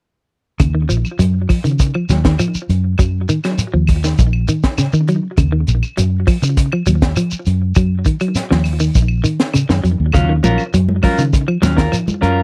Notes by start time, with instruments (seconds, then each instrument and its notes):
0.60 fingered electric bass D#2, clean electric guitar C#3, kick, closed hi-hat, claves, shekere
0.75 clean electric guitar D#3
0.89 fingered electric bass A#1, clean electric guitar F3, closed hi-hat, shekere
1.05 claves, shekere
1.19 fingered electric bass F#2, clean electric guitar F#3, closed hi-hat, shekere
1.49 clean electric guitar F3, kick, open hi-hat, claves, shekere
1.64 fingered electric bass C#3, clean electric guitar D#3, closed hi-hat, shekere
1.79 kick, closed hi-hat, shekere
1.94 clean electric guitar F3, claves
2.09 fingered electric bass D#2, clean electric guitar F#3, snare, closed hi-hat, shekere
2.25 clean electric guitar D#3, kick, snare, closed hi-hat, shekere
2.39 clean electric guitar F3, closed hi-hat, claves, shekere
2.55 muted fingered electric bass stroke, shekere
2.69 fingered electric bass F#2, closed hi-hat, shekere
2.98 fingered electric bass F#2, clean electric guitar F#3, kick, closed hi-hat, claves, shekere
3.29 clean electric guitar D#3, closed hi-hat, shekere
3.44 clean electric guitar F#3, snare, closed hi-hat, claves, shekere
3.58 closed hi-hat, shekere
3.74 fingered electric bass D#2, clean electric guitar F3
3.87 kick, open hi-hat, claves, shekere
4.04 clean electric guitar D#3, snare, shekere
4.18 fingered electric bass A#1, kick, closed hi-hat, shekere
4.33 claves
4.48 clean electric guitar D#3, closed hi-hat, shekere
4.63 kick, snare, closed hi-hat, shekere
4.78 clean electric guitar C#3, snare, closed hi-hat, claves, shekere
4.93 fingered electric bass D#3, clean electric guitar D#3, shekere
5.08 clean electric guitar F#3, closed hi-hat, shekere
5.37 fingered electric bass D#2, clean electric guitar C#3, kick, closed hi-hat, claves, shekere
5.52 clean electric guitar D#3
5.67 fingered electric bass A#1, closed hi-hat, shekere
5.83 claves, shekere
5.97 fingered electric bass F#2, clean electric guitar F#3, closed hi-hat, shekere
6.27 clean electric guitar F3, kick, open hi-hat, claves, shekere
6.42 fingered electric bass C#3, muted clean electric guitar stroke, closed hi-hat, shekere
6.57 kick, closed hi-hat, shekere
6.72 clean electric guitar F3, claves
6.86 fingered electric bass D#2, clean electric guitar F#3, closed hi-hat, shekere
7.02 kick, snare, closed hi-hat, shekere
7.16 clean electric guitar F3, closed hi-hat, claves, shekere
7.31 muted fingered electric bass stroke, shekere
7.46 fingered electric bass F#2, closed hi-hat, shekere
7.75 fingered electric bass F#2, clean electric guitar F#3, kick, closed hi-hat, claves, shekere
8.05 clean electric guitar D#3, kick, closed hi-hat, shekere
8.20 clean electric guitar F#3, closed hi-hat, claves, shekere
8.35 snare, closed hi-hat, shekere
8.51 fingered electric bass D#2, clean electric guitar F3, snare
8.64 open hi-hat, claves, shekere
8.80 clean electric guitar D#3, shekere
8.95 fingered electric bass A#1, kick, closed hi-hat, shekere
9.08 claves
9.24 clean electric guitar D#3, closed hi-hat, shekere
9.40 snare, closed hi-hat, shekere
9.54 clean electric guitar C#3, closed hi-hat, claves, shekere
9.69 fingered electric bass F#2, clean electric guitar D#3, snare, shekere
9.84 fingered electric bass F2, clean electric guitar F#3, closed hi-hat, shekere
10.00 fingered electric bass D#2
10.12 fingered electric bass D#2, clean electric guitar C#3 F#3 C#4 F4, muted clean electric guitar stroke, kick, closed hi-hat, high conga, claves, shekere
10.29 clean electric guitar D#3
10.43 fingered electric bass A#1, clean electric guitar F3 F#3 C#4 F4 A#4, closed hi-hat, high conga, shekere
10.58 claves, shekere
10.74 fingered electric bass F#2, clean electric guitar F#3, closed hi-hat, high conga, shekere
10.89 high conga
11.03 clean electric guitar F3 F#3 C#4 F4 A#4, kick, open hi-hat, high conga, claves, shekere
11.18 fingered electric bass C#3, clean electric guitar D#3, closed hi-hat, shekere
11.33 kick, closed hi-hat, high conga, shekere
11.48 clean electric guitar F3, claves
11.62 fingered electric bass D#2, clean electric guitar F#3 C#4, muted clean electric guitar stroke, snare, closed hi-hat, high conga, shekere
11.77 clean electric guitar D#3 F4 A#4, kick, snare, closed hi-hat, shekere
11.92 clean electric guitar F3, closed hi-hat, claves, shekere
12.08 muted fingered electric bass stroke, high conga, shekere
12.21 fingered electric bass F#2, clean electric guitar F#3 C#4 F4 A#4, closed hi-hat, shekere